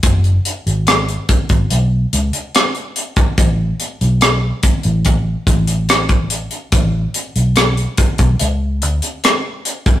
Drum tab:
HH |xxxxxxxxx-xxxxxx|x-xxx-xxx-xxxxxx|x-xxxxxxx-xxx-xx|
SD |----r-------r---|----r-------r---|----r-------r---|
BD |o-----oo-------o|o-----o-o-o--o--|o-----oo-------o|